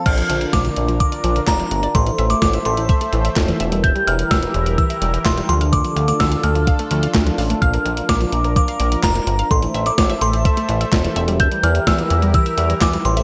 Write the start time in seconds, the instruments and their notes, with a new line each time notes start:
0.06 analog synth bass A#1, analog synth pad D4 F4 A#4, synth arpeggio sound D5, synth bell F6, kick, closed hi-hat, crash
0.18 synth arpeggio sound F3, closed hi-hat
0.29 analog synth bass A#1, synth arpeggio sound D3, closed hi-hat
0.41 closed hi-hat
0.53 analog synth bass A#1, synth arpeggio sound F3, synth bell D6, kick, snare, closed hi-hat
0.65 synth arpeggio sound D3, closed hi-hat
0.76 analog synth bass A#1, closed hi-hat
0.88 synth arpeggio sound F3, closed hi-hat
1.00 synth arpeggio sound D3, synth bell D6, kick, closed hi-hat
1.12 synth arpeggio sound D5, closed hi-hat
1.24 analog synth bass A#1, synth arpeggio sound F3, closed hi-hat
1.36 synth arpeggio sound D3, closed hi-hat
1.47 analog synth bass F1, synth arpeggio sound D5, synth bell A#5, kick, snare, clap, closed hi-hat
1.60 synth arpeggio sound F3, closed hi-hat
1.71 analog synth bass G1, synth arpeggio sound D3, closed hi-hat
1.83 synth arpeggio sound D5, closed hi-hat
1.95 analog synth bass A1, analog synth pad A3 A4 C5 E5, synth arpeggio sound A3, synth bell C6, kick, closed hi-hat
2.06 synth arpeggio sound E3, closed hi-hat
2.18 analog synth bass A1, synth arpeggio sound E5, closed hi-hat
2.30 synth arpeggio sound A3, synth bell D6, closed hi-hat
2.42 analog synth bass A1, synth arpeggio sound E3, synth bell D6, kick, snare, closed hi-hat
2.53 synth arpeggio sound E5, closed hi-hat
2.65 analog synth bass A1, synth arpeggio sound A3, synth bell C6, closed hi-hat
2.77 synth arpeggio sound E3, closed hi-hat
2.89 synth arpeggio sound E5, kick, closed hi-hat
3.01 synth arpeggio sound A3, closed hi-hat
3.13 analog synth bass A1, synth arpeggio sound E3, closed hi-hat
3.25 synth arpeggio sound E5, closed hi-hat
3.36 analog synth bass E1, synth arpeggio sound A3, kick, snare, clap, closed hi-hat
3.48 synth arpeggio sound E3, closed hi-hat
3.60 analog synth bass E1, analog synth pad E3 E4 G4 A#4, synth arpeggio sound E5, closed hi-hat
3.72 synth arpeggio sound G3, closed hi-hat
3.84 synth arpeggio sound E5, synth bell G6, kick, closed hi-hat
3.95 synth arpeggio sound G3, closed hi-hat
4.07 analog synth bass E1, synth arpeggio sound E3, synth bell F6, closed hi-hat
4.19 closed hi-hat
4.31 analog synth bass E1, synth arpeggio sound G3, synth bell E6, kick, snare, closed hi-hat
4.43 synth arpeggio sound E3, closed hi-hat
4.54 analog synth bass E1, closed hi-hat
4.66 synth arpeggio sound G3, closed hi-hat
4.78 synth arpeggio sound E3, synth bell E6, kick, closed hi-hat
4.90 synth arpeggio sound E5, closed hi-hat
5.02 analog synth bass E1, synth arpeggio sound G3, closed hi-hat
5.14 synth arpeggio sound E3, closed hi-hat
5.25 analog synth bass E1, synth arpeggio sound E5, synth bell C6, kick, snare, clap, closed hi-hat
5.37 synth arpeggio sound G3, closed hi-hat
5.49 analog synth bass D2, analog synth pad D3 D4 F4 A4, synth arpeggio sound F3, synth bell C6, closed hi-hat
5.61 synth arpeggio sound F5, closed hi-hat
5.73 synth arpeggio sound A3, synth bell D6, kick, closed hi-hat
5.85 synth arpeggio sound F3, closed hi-hat
5.96 analog synth bass D2, synth arpeggio sound F5, closed hi-hat
6.08 synth arpeggio sound A3, synth bell D6, closed hi-hat
6.20 analog synth bass D2, synth arpeggio sound F3, synth bell E6, kick, snare, closed hi-hat
6.32 synth arpeggio sound F5, closed hi-hat
6.43 analog synth bass D2, synth arpeggio sound A3, synth bell F6, closed hi-hat
6.55 synth arpeggio sound F3, closed hi-hat
6.67 synth arpeggio sound F5, kick, closed hi-hat
6.79 synth arpeggio sound A3, closed hi-hat
6.91 analog synth bass D2, synth arpeggio sound F3, closed hi-hat
7.03 synth arpeggio sound F5, closed hi-hat
7.14 analog synth bass D2, synth arpeggio sound A3, kick, snare, clap, closed hi-hat
7.26 synth arpeggio sound F3, closed hi-hat
7.38 analog synth bass A1, synth arpeggio sound F5, open hi-hat
7.50 synth arpeggio sound A3, closed hi-hat
7.62 analog synth bass A#1, analog synth pad A#4, synth arpeggio sound F5, synth bell F6, kick, closed hi-hat
7.74 synth arpeggio sound A#3, closed hi-hat
7.85 analog synth bass A#1, synth arpeggio sound F3, closed hi-hat
7.97 closed hi-hat
8.09 analog synth bass A#1, synth arpeggio sound A#3, synth bell D6, kick, snare, closed hi-hat
8.21 synth arpeggio sound F3, closed hi-hat
8.32 analog synth bass A#1, closed hi-hat
8.44 synth arpeggio sound A#3, closed hi-hat
8.56 synth arpeggio sound F3, synth bell D6, kick, closed hi-hat
8.68 synth arpeggio sound F5, closed hi-hat
8.80 analog synth bass A#1, synth arpeggio sound A#3, closed hi-hat
8.92 synth arpeggio sound F3, closed hi-hat
9.03 analog synth bass F1, synth arpeggio sound F5, synth bell A#5, kick, snare, clap, closed hi-hat
9.15 synth arpeggio sound A#3, closed hi-hat
9.27 analog synth bass G1, synth arpeggio sound F3, closed hi-hat
9.39 synth arpeggio sound F5, closed hi-hat
9.51 analog synth bass A1, synth arpeggio sound A3, analog synth pad A3 A4 C5 E5, synth bell C6, kick, closed hi-hat
9.62 synth arpeggio sound E3, closed hi-hat
9.74 analog synth bass A1, synth arpeggio sound E5, closed hi-hat
9.86 synth arpeggio sound A3, synth bell D6, closed hi-hat
9.98 analog synth bass A1, synth arpeggio sound E3, synth bell D6, kick, snare, closed hi-hat
10.10 synth arpeggio sound E5, closed hi-hat
10.21 analog synth bass A1, synth arpeggio sound A3, synth bell C6, closed hi-hat
10.33 synth arpeggio sound E3, closed hi-hat
10.45 synth arpeggio sound E5, kick, closed hi-hat
10.57 synth arpeggio sound A3, closed hi-hat
10.69 analog synth bass A1, synth arpeggio sound E3, closed hi-hat
10.81 synth arpeggio sound E5, closed hi-hat
10.92 analog synth bass E1, synth arpeggio sound A3, kick, snare, clap, closed hi-hat
11.04 synth arpeggio sound E3, closed hi-hat
11.16 analog synth bass E1, analog synth pad E3 E4 G4 A#4, synth arpeggio sound E5, closed hi-hat
11.28 synth arpeggio sound G3, closed hi-hat
11.40 synth arpeggio sound E5, synth bell G6, kick, closed hi-hat
11.52 synth arpeggio sound G3, closed hi-hat
11.63 analog synth bass E2, synth arpeggio sound E3, synth bell F6, closed hi-hat
11.75 closed hi-hat
11.87 analog synth bass E2, synth arpeggio sound G3, synth bell E6, kick, snare, closed hi-hat
11.98 synth arpeggio sound E3, closed hi-hat
12.10 analog synth bass E2, closed hi-hat
12.22 synth arpeggio sound G3, closed hi-hat
12.34 synth arpeggio sound E3, synth bell E6, kick, closed hi-hat
12.46 synth arpeggio sound E5, closed hi-hat
12.58 analog synth bass E2, synth arpeggio sound G3, closed hi-hat
12.70 synth arpeggio sound E3, closed hi-hat
12.81 analog synth bass E2, synth arpeggio sound E5, synth bell D6, kick, snare, clap, closed hi-hat
12.93 synth arpeggio sound G3, closed hi-hat
13.05 analog synth bass A1, synth arpeggio sound E3, analog synth pad A3 A4 C5 E5, synth bell C6, closed hi-hat
13.17 synth arpeggio sound E5, closed hi-hat